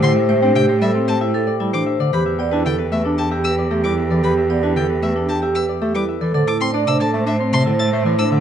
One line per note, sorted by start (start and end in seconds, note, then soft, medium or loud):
0.00 1.99 A2 medium
0.00 0.12 D3 medium
0.00 0.20 E4 medium
0.00 1.33 G4 medium
0.00 1.96 G4 medium
0.00 0.93 A4 medium
0.00 0.41 C5 medium
0.00 1.46 D5 medium
0.00 0.15 E5 medium
0.00 0.28 G5 medium
0.00 0.12 C6 medium
0.16 0.54 E5 medium
0.28 0.39 A3 medium
0.28 0.46 C5 medium
0.28 1.07 G5 medium
0.42 0.52 C4 medium
0.42 0.59 D4 medium
0.42 0.67 C5 medium
0.55 0.65 C3 medium
0.55 0.72 G4 medium
0.55 0.81 E5 medium
0.55 0.65 G5 medium
0.69 1.72 C5 medium
0.81 0.91 G3 medium
0.81 0.99 A4 medium
0.81 0.91 E5 medium
0.81 1.20 E5 medium
0.94 1.12 C4 medium
0.94 1.59 A4 medium
1.08 2.37 G5 medium
1.08 1.18 A5 medium
1.21 1.38 E4 medium
1.21 1.85 E5 medium
1.34 3.44 G4 medium
1.34 1.51 A4 medium
1.47 1.99 D5 medium
1.60 1.70 G3 medium
1.60 1.78 E4 medium
1.60 2.15 A4 medium
1.73 1.84 E3 medium
1.73 1.91 D4 medium
1.73 2.15 C5 medium
1.73 1.83 D6 medium
1.86 2.25 E5 medium
2.00 2.10 D3 medium
2.00 3.57 D5 medium
2.13 6.20 E2 medium
2.13 2.23 E3 medium
2.13 6.17 G4 medium
2.13 2.30 G4 medium
2.13 2.50 B4 medium
2.13 2.23 B5 medium
2.26 2.64 E5 medium
2.39 2.49 B3 medium
2.39 2.57 D5 medium
2.39 3.18 G5 medium
2.51 2.63 D4 medium
2.51 2.70 E4 medium
2.51 2.77 B4 medium
2.65 2.76 D3 medium
2.65 2.83 A4 medium
2.65 2.91 E5 medium
2.65 2.76 G5 medium
2.78 3.83 B4 medium
2.92 3.02 A3 medium
2.92 3.09 B4 medium
2.92 3.30 E5 medium
2.92 3.02 E5 medium
3.04 3.23 D4 medium
3.04 3.15 D4 medium
3.04 3.70 A4 medium
3.18 4.49 G5 medium
3.18 3.28 A5 medium
3.31 3.49 G4 medium
3.31 3.97 E5 medium
3.44 5.55 G4 medium
3.44 3.62 B4 medium
3.44 3.54 E6 medium
3.58 4.10 D5 medium
3.71 3.81 A3 medium
3.71 3.88 G4 medium
3.71 5.15 A4 medium
3.84 3.94 G3 medium
3.84 4.01 E4 medium
3.84 4.23 B4 medium
3.84 3.94 D6 medium
3.98 4.36 E5 medium
4.10 4.21 E3 medium
4.10 4.28 A4 medium
4.10 5.67 D5 medium
4.24 4.34 E3 medium
4.24 4.41 G4 medium
4.24 4.62 B4 medium
4.24 4.34 B5 medium
4.37 4.75 E5 medium
4.50 4.60 B3 medium
4.50 4.67 D5 medium
4.50 5.28 G5 medium
4.63 4.73 D4 medium
4.63 4.80 E4 medium
4.63 4.88 B4 medium
4.76 4.86 D3 medium
4.76 4.93 A4 medium
4.76 5.02 E5 medium
4.76 4.86 G5 medium
4.89 5.94 B4 medium
5.02 5.12 A3 medium
5.02 5.20 B4 medium
5.02 5.12 E5 medium
5.02 5.41 E5 medium
5.16 5.25 D4 medium
5.16 5.33 D4 medium
5.16 5.80 A4 medium
5.29 6.36 G5 medium
5.29 5.39 A5 medium
5.42 5.59 G4 medium
5.42 6.07 E5 medium
5.55 6.37 G4 medium
5.55 5.72 B4 medium
5.55 5.65 E6 medium
5.69 6.20 D5 medium
5.81 5.91 A3 medium
5.81 5.99 G4 medium
5.81 7.65 A4 medium
5.95 6.05 G3 medium
5.95 6.12 E4 medium
5.95 6.37 B4 medium
5.95 6.05 D6 medium
6.09 7.79 E5 medium
6.21 6.31 E3 medium
6.21 6.33 A4 medium
6.21 6.33 D5 medium
6.34 8.40 A2 medium
6.34 6.44 D3 medium
6.34 6.51 A4 medium
6.34 6.54 C5 soft
6.34 6.73 D5 medium
6.47 6.65 E4 medium
6.47 6.86 A5 medium
6.47 6.57 D6 medium
6.60 6.70 C4 medium
6.60 6.81 C5 medium
6.60 6.70 C6 medium
6.60 7.39 C6 medium
6.74 6.84 D4 medium
6.74 6.91 D5 medium
6.74 6.99 D5 loud
6.87 6.97 C3 medium
6.87 7.04 D4 medium
6.87 7.08 C5 medium
6.87 7.12 A5 medium
6.87 6.97 E6 medium
7.00 7.17 A4 medium
7.00 8.05 D5 medium
7.00 7.10 A5 medium
7.13 7.23 A3 medium
7.13 7.35 C5 medium
7.13 7.52 A5 medium
7.26 7.36 D4 medium
7.26 7.44 C5 medium
7.26 7.92 C5 medium
7.26 7.36 E5 medium
7.40 7.57 C4 medium
7.40 8.40 C6 medium
7.44 7.63 C5 medium
7.53 7.63 C3 medium
7.53 8.17 A5 medium
7.53 7.63 C6 medium
7.66 7.76 D3 medium
7.66 7.83 E4 medium
7.66 8.40 A4 medium
7.71 7.90 C5 medium
7.79 7.96 C5 medium
7.79 8.31 E5 medium
7.79 7.89 A6 medium
7.92 8.02 A3 loud
7.92 8.40 C5 medium
7.98 8.17 C5 medium
8.05 8.15 E3 medium
8.05 8.22 E4 medium
8.05 8.40 D5 medium
8.18 8.36 D4 medium
8.18 8.40 A5 medium
8.18 8.28 E6 medium
8.25 8.40 C5 medium
8.31 8.40 D3 medium
8.31 8.40 E5 medium